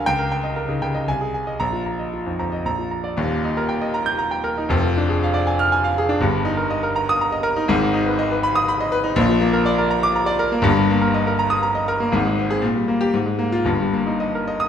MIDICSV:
0, 0, Header, 1, 2, 480
1, 0, Start_track
1, 0, Key_signature, -3, "major"
1, 0, Tempo, 517241
1, 51, Time_signature, 3, 2, 24, 8
1, 3892, Tempo, 498753
1, 8692, Tempo, 492611
1, 12052, Tempo, 523560
1, 13936, End_track
2, 0, Start_track
2, 0, Title_t, "Grand piano"
2, 0, Program_c, 0, 0
2, 0, Control_c, 0, 64, 127
2, 58, Note_on_c, 0, 79, 123
2, 63, Note_on_c, 0, 37, 89
2, 66, Control_c, 0, 64, 0
2, 172, Note_on_c, 0, 70, 70
2, 206, Control_c, 0, 64, 127
2, 242, Note_off_c, 0, 79, 0
2, 294, Note_on_c, 0, 79, 82
2, 358, Note_off_c, 0, 70, 0
2, 404, Note_on_c, 0, 75, 68
2, 479, Note_off_c, 0, 79, 0
2, 519, Note_on_c, 0, 70, 67
2, 593, Note_off_c, 0, 75, 0
2, 635, Note_on_c, 0, 49, 65
2, 635, Note_on_c, 0, 63, 62
2, 710, Note_off_c, 0, 70, 0
2, 744, Note_off_c, 0, 49, 0
2, 758, Note_on_c, 0, 49, 67
2, 760, Note_on_c, 0, 79, 81
2, 827, Note_off_c, 0, 63, 0
2, 878, Note_on_c, 0, 75, 71
2, 948, Note_off_c, 0, 49, 0
2, 950, Note_off_c, 0, 79, 0
2, 974, Note_off_c, 0, 37, 0
2, 997, Note_off_c, 0, 75, 0
2, 1001, Note_on_c, 0, 36, 72
2, 1005, Note_on_c, 0, 80, 95
2, 1012, Control_c, 0, 64, 0
2, 1123, Note_on_c, 0, 68, 63
2, 1150, Control_c, 0, 64, 127
2, 1193, Note_off_c, 0, 80, 0
2, 1246, Note_on_c, 0, 80, 65
2, 1314, Note_off_c, 0, 68, 0
2, 1364, Note_on_c, 0, 75, 69
2, 1437, Note_off_c, 0, 80, 0
2, 1470, Note_off_c, 0, 36, 0
2, 1481, Note_on_c, 0, 82, 95
2, 1484, Note_on_c, 0, 34, 77
2, 1485, Note_off_c, 0, 75, 0
2, 1500, Control_c, 0, 64, 0
2, 1601, Note_on_c, 0, 65, 62
2, 1641, Control_c, 0, 64, 127
2, 1680, Note_off_c, 0, 82, 0
2, 1727, Note_on_c, 0, 82, 62
2, 1801, Note_off_c, 0, 65, 0
2, 1847, Note_on_c, 0, 75, 58
2, 1926, Note_off_c, 0, 82, 0
2, 1978, Note_on_c, 0, 65, 58
2, 2047, Note_off_c, 0, 75, 0
2, 2099, Note_on_c, 0, 41, 54
2, 2101, Note_on_c, 0, 63, 48
2, 2174, Note_off_c, 0, 65, 0
2, 2206, Note_off_c, 0, 41, 0
2, 2220, Note_on_c, 0, 41, 64
2, 2221, Note_on_c, 0, 82, 70
2, 2297, Note_off_c, 0, 63, 0
2, 2340, Note_on_c, 0, 75, 66
2, 2417, Note_off_c, 0, 41, 0
2, 2418, Note_off_c, 0, 82, 0
2, 2438, Note_off_c, 0, 34, 0
2, 2462, Note_on_c, 0, 34, 67
2, 2465, Note_off_c, 0, 75, 0
2, 2468, Note_on_c, 0, 82, 87
2, 2484, Control_c, 0, 64, 0
2, 2584, Note_on_c, 0, 65, 53
2, 2633, Control_c, 0, 64, 127
2, 2663, Note_off_c, 0, 82, 0
2, 2702, Note_on_c, 0, 82, 65
2, 2782, Note_off_c, 0, 65, 0
2, 2819, Note_on_c, 0, 74, 62
2, 2900, Note_off_c, 0, 82, 0
2, 2935, Note_off_c, 0, 34, 0
2, 2939, Note_on_c, 0, 27, 92
2, 2945, Note_off_c, 0, 74, 0
2, 2945, Note_on_c, 0, 39, 100
2, 2971, Control_c, 0, 64, 0
2, 3069, Note_on_c, 0, 46, 80
2, 3141, Control_c, 0, 64, 127
2, 3193, Note_on_c, 0, 63, 79
2, 3258, Note_off_c, 0, 46, 0
2, 3314, Note_on_c, 0, 70, 80
2, 3379, Note_off_c, 0, 63, 0
2, 3423, Note_on_c, 0, 79, 75
2, 3498, Note_off_c, 0, 70, 0
2, 3540, Note_on_c, 0, 75, 78
2, 3611, Note_off_c, 0, 79, 0
2, 3657, Note_on_c, 0, 82, 91
2, 3729, Note_off_c, 0, 75, 0
2, 3767, Note_on_c, 0, 91, 108
2, 3845, Note_off_c, 0, 82, 0
2, 3885, Note_on_c, 0, 82, 82
2, 3961, Note_off_c, 0, 91, 0
2, 4006, Note_on_c, 0, 79, 77
2, 4083, Note_off_c, 0, 82, 0
2, 4127, Note_on_c, 0, 70, 92
2, 4204, Note_off_c, 0, 79, 0
2, 4258, Note_on_c, 0, 63, 75
2, 4325, Note_off_c, 0, 70, 0
2, 4333, Note_off_c, 0, 27, 0
2, 4336, Note_off_c, 0, 39, 0
2, 4369, Note_on_c, 0, 29, 104
2, 4379, Note_off_c, 0, 63, 0
2, 4381, Note_on_c, 0, 41, 111
2, 4399, Control_c, 0, 64, 0
2, 4508, Note_on_c, 0, 53, 81
2, 4561, Control_c, 0, 64, 127
2, 4644, Note_on_c, 0, 62, 81
2, 4699, Note_off_c, 0, 53, 0
2, 4755, Note_on_c, 0, 68, 80
2, 4828, Note_off_c, 0, 62, 0
2, 4892, Note_on_c, 0, 77, 88
2, 4943, Note_off_c, 0, 68, 0
2, 4993, Note_on_c, 0, 74, 83
2, 5072, Note_off_c, 0, 77, 0
2, 5119, Note_on_c, 0, 80, 88
2, 5182, Note_off_c, 0, 74, 0
2, 5237, Note_on_c, 0, 89, 122
2, 5305, Note_off_c, 0, 80, 0
2, 5361, Note_on_c, 0, 80, 97
2, 5424, Note_off_c, 0, 89, 0
2, 5478, Note_on_c, 0, 77, 89
2, 5546, Note_off_c, 0, 80, 0
2, 5612, Note_on_c, 0, 68, 92
2, 5664, Note_off_c, 0, 77, 0
2, 5717, Note_on_c, 0, 62, 89
2, 5782, Note_off_c, 0, 29, 0
2, 5787, Note_off_c, 0, 41, 0
2, 5790, Note_off_c, 0, 68, 0
2, 5829, Note_on_c, 0, 31, 99
2, 5830, Note_off_c, 0, 62, 0
2, 5842, Control_c, 0, 64, 0
2, 5843, Note_on_c, 0, 43, 99
2, 5961, Note_on_c, 0, 55, 73
2, 6009, Control_c, 0, 64, 127
2, 6063, Note_on_c, 0, 63, 94
2, 6140, Note_off_c, 0, 55, 0
2, 6182, Note_on_c, 0, 70, 80
2, 6251, Note_off_c, 0, 63, 0
2, 6308, Note_on_c, 0, 75, 86
2, 6372, Note_off_c, 0, 70, 0
2, 6430, Note_on_c, 0, 70, 84
2, 6495, Note_off_c, 0, 75, 0
2, 6551, Note_on_c, 0, 82, 101
2, 6616, Note_off_c, 0, 70, 0
2, 6681, Note_on_c, 0, 87, 122
2, 6737, Note_off_c, 0, 82, 0
2, 6797, Note_on_c, 0, 82, 94
2, 6861, Note_off_c, 0, 87, 0
2, 6904, Note_on_c, 0, 75, 86
2, 6978, Note_off_c, 0, 82, 0
2, 7008, Note_on_c, 0, 70, 102
2, 7091, Note_off_c, 0, 75, 0
2, 7135, Note_on_c, 0, 63, 92
2, 7202, Note_off_c, 0, 70, 0
2, 7218, Note_off_c, 0, 31, 0
2, 7224, Note_off_c, 0, 43, 0
2, 7250, Note_on_c, 0, 32, 120
2, 7254, Note_off_c, 0, 63, 0
2, 7258, Note_on_c, 0, 44, 127
2, 7270, Control_c, 0, 64, 0
2, 7376, Note_on_c, 0, 51, 89
2, 7406, Control_c, 0, 64, 127
2, 7493, Note_on_c, 0, 63, 94
2, 7567, Note_off_c, 0, 51, 0
2, 7614, Note_on_c, 0, 71, 79
2, 7686, Note_off_c, 0, 63, 0
2, 7735, Note_on_c, 0, 75, 91
2, 7806, Note_off_c, 0, 71, 0
2, 7853, Note_on_c, 0, 71, 86
2, 7927, Note_off_c, 0, 75, 0
2, 7972, Note_on_c, 0, 83, 111
2, 8045, Note_off_c, 0, 71, 0
2, 8089, Note_on_c, 0, 87, 124
2, 8165, Note_off_c, 0, 83, 0
2, 8213, Note_on_c, 0, 83, 104
2, 8284, Note_off_c, 0, 87, 0
2, 8330, Note_on_c, 0, 75, 90
2, 8407, Note_off_c, 0, 83, 0
2, 8439, Note_on_c, 0, 71, 110
2, 8525, Note_off_c, 0, 75, 0
2, 8554, Note_on_c, 0, 63, 93
2, 8639, Note_off_c, 0, 71, 0
2, 8654, Note_off_c, 0, 32, 0
2, 8658, Note_off_c, 0, 44, 0
2, 8670, Note_on_c, 0, 34, 123
2, 8675, Note_on_c, 0, 46, 120
2, 8684, Note_off_c, 0, 63, 0
2, 8714, Control_c, 0, 64, 0
2, 8796, Note_on_c, 0, 53, 82
2, 8880, Control_c, 0, 64, 127
2, 8912, Note_on_c, 0, 58, 94
2, 8997, Note_off_c, 0, 53, 0
2, 9033, Note_on_c, 0, 70, 94
2, 9115, Note_off_c, 0, 58, 0
2, 9155, Note_on_c, 0, 74, 92
2, 9235, Note_off_c, 0, 70, 0
2, 9278, Note_on_c, 0, 70, 89
2, 9357, Note_off_c, 0, 74, 0
2, 9397, Note_on_c, 0, 82, 101
2, 9479, Note_off_c, 0, 70, 0
2, 9521, Note_on_c, 0, 86, 127
2, 9598, Note_off_c, 0, 82, 0
2, 9642, Note_on_c, 0, 82, 91
2, 9719, Note_off_c, 0, 86, 0
2, 9746, Note_on_c, 0, 74, 99
2, 9838, Note_off_c, 0, 82, 0
2, 9871, Note_on_c, 0, 70, 99
2, 9948, Note_off_c, 0, 74, 0
2, 9994, Note_on_c, 0, 58, 95
2, 10069, Note_off_c, 0, 70, 0
2, 10075, Note_off_c, 0, 34, 0
2, 10077, Note_off_c, 0, 46, 0
2, 10094, Note_on_c, 0, 31, 111
2, 10109, Note_on_c, 0, 43, 121
2, 10119, Note_off_c, 0, 58, 0
2, 10140, Control_c, 0, 64, 0
2, 10237, Note_on_c, 0, 55, 83
2, 10320, Control_c, 0, 64, 127
2, 10369, Note_on_c, 0, 58, 92
2, 10432, Note_off_c, 0, 55, 0
2, 10479, Note_on_c, 0, 70, 86
2, 10559, Note_off_c, 0, 58, 0
2, 10603, Note_on_c, 0, 75, 88
2, 10675, Note_off_c, 0, 70, 0
2, 10728, Note_on_c, 0, 70, 92
2, 10797, Note_off_c, 0, 75, 0
2, 10844, Note_on_c, 0, 82, 102
2, 10919, Note_off_c, 0, 70, 0
2, 10952, Note_on_c, 0, 87, 113
2, 11037, Note_off_c, 0, 82, 0
2, 11075, Note_on_c, 0, 82, 92
2, 11152, Note_off_c, 0, 87, 0
2, 11194, Note_on_c, 0, 75, 82
2, 11274, Note_off_c, 0, 82, 0
2, 11322, Note_on_c, 0, 70, 98
2, 11395, Note_off_c, 0, 75, 0
2, 11440, Note_on_c, 0, 58, 91
2, 11516, Note_off_c, 0, 31, 0
2, 11519, Note_off_c, 0, 70, 0
2, 11524, Note_off_c, 0, 43, 0
2, 11555, Note_on_c, 0, 32, 104
2, 11565, Note_on_c, 0, 44, 112
2, 11566, Note_off_c, 0, 58, 0
2, 11588, Control_c, 0, 64, 0
2, 11685, Note_on_c, 0, 56, 86
2, 11741, Control_c, 0, 64, 127
2, 11816, Note_on_c, 0, 60, 83
2, 11882, Note_off_c, 0, 56, 0
2, 11931, Note_on_c, 0, 68, 100
2, 12008, Note_off_c, 0, 60, 0
2, 12032, Note_off_c, 0, 32, 0
2, 12037, Note_off_c, 0, 44, 0
2, 12039, Note_on_c, 0, 46, 98
2, 12053, Note_off_c, 0, 68, 0
2, 12070, Control_c, 0, 64, 0
2, 12167, Note_on_c, 0, 55, 70
2, 12243, Control_c, 0, 64, 127
2, 12282, Note_on_c, 0, 58, 80
2, 12354, Note_off_c, 0, 55, 0
2, 12397, Note_on_c, 0, 67, 103
2, 12472, Note_off_c, 0, 58, 0
2, 12499, Note_off_c, 0, 46, 0
2, 12516, Note_on_c, 0, 44, 98
2, 12518, Note_off_c, 0, 67, 0
2, 12536, Control_c, 0, 64, 0
2, 12627, Note_on_c, 0, 56, 70
2, 12724, Control_c, 0, 64, 127
2, 12745, Note_on_c, 0, 58, 82
2, 12827, Note_off_c, 0, 56, 0
2, 12871, Note_on_c, 0, 65, 98
2, 12947, Note_off_c, 0, 58, 0
2, 12986, Note_on_c, 0, 31, 88
2, 12987, Note_off_c, 0, 44, 0
2, 12996, Note_on_c, 0, 43, 94
2, 12999, Note_off_c, 0, 65, 0
2, 13022, Control_c, 0, 64, 0
2, 13126, Note_on_c, 0, 55, 72
2, 13184, Control_c, 0, 64, 127
2, 13248, Note_on_c, 0, 58, 77
2, 13321, Note_off_c, 0, 55, 0
2, 13367, Note_on_c, 0, 63, 70
2, 13442, Note_off_c, 0, 58, 0
2, 13492, Note_on_c, 0, 75, 74
2, 13562, Note_off_c, 0, 63, 0
2, 13629, Note_on_c, 0, 70, 70
2, 13685, Note_off_c, 0, 75, 0
2, 13744, Note_on_c, 0, 75, 85
2, 13814, Note_off_c, 0, 70, 0
2, 13858, Note_on_c, 0, 87, 111
2, 13933, Note_off_c, 0, 75, 0
2, 13936, Note_off_c, 0, 31, 0
2, 13936, Note_off_c, 0, 43, 0
2, 13936, Note_off_c, 0, 87, 0
2, 13936, End_track
0, 0, End_of_file